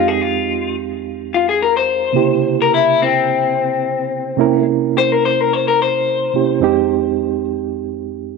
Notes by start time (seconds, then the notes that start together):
Already playing: F2 G#3 C4 D#4 G4
0.08 G#4
0.22 F4
1.34 F4
1.49 G#4
1.62 A#4
1.77 C5
2.13 C3 C#3 A#3 E4 G4
2.62 A#4
2.74 E4
3.02 C4
4.37 C3 A#3 C#4 E4 A#4
4.98 C5
5.12 A#4
5.25 C5
5.41 A#4
5.53 C5
5.68 A#4
5.82 C5
6.34 C3 A#3 C#4 E4 G4
6.60 F2 G#3 C4 D#4 G4